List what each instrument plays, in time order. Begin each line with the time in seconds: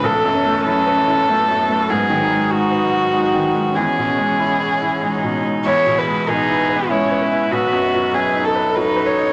Already playing: analog synth pad C#4 B4
0.03 upright piano B1, cello E3, viola A3, analog synth pad A3, violin A4
0.25 upright piano F#2
0.35 viola C#4
0.45 upright piano A3
0.65 cello F#3, upright piano E4, violin A4
0.87 upright piano B4
0.97 cello E3
1.08 upright piano E4
1.27 cello F#3, upright piano A3, viola B3
1.48 upright piano F#2
1.69 upright piano A3
1.89 upright piano G#2, analog synth pad G#3 F#4, viola B3, violin G#4
2.10 upright piano D#3
2.21 viola D#4
2.30 upright piano G#3
2.50 cello G#3, upright piano F#4, violin F#4
2.71 upright piano B4
2.81 cello F#3
2.92 upright piano F#4
3.13 upright piano G#3, viola D#4
3.34 upright piano D#3
3.55 upright piano G#3
3.75 upright piano E2, analog synth pad E3 C#5, cello E3, viola C#4, violin G#4
3.98 upright piano B2
4.18 upright piano G#3
4.39 upright piano E4
4.60 upright piano C#5
4.81 upright piano E4
5.02 upright piano G#3, cello D#4
5.23 upright piano B2
5.45 upright piano G#3
5.65 upright piano E2, analog synth pad E3 G#3 B4, cello E4, viola G#4, violin C#5
5.86 upright piano B2
5.98 violin B4
6.07 upright piano G#3
6.28 upright piano B2, cello D#4, violin G#4, viola B4
6.48 upright piano E4
6.69 upright piano B4
6.76 cello B3
6.90 upright piano G#3, cello C#4, violin E4, viola C#5
7.11 upright piano B4
7.21 viola B4
7.31 upright piano E4
7.51 upright piano B1, analog synth pad F#3 D#5, cello B3, violin F#4
7.73 upright piano F#2
7.94 upright piano F#3
8.14 upright piano F#2, violin G#4, viola B4
8.35 upright piano D#4
8.44 violin A4, viola A4
8.55 upright piano B4
8.74 upright piano F#3, cello D#4, violin B4
8.96 upright piano B4
9.06 violin C#5
9.17 upright piano D#4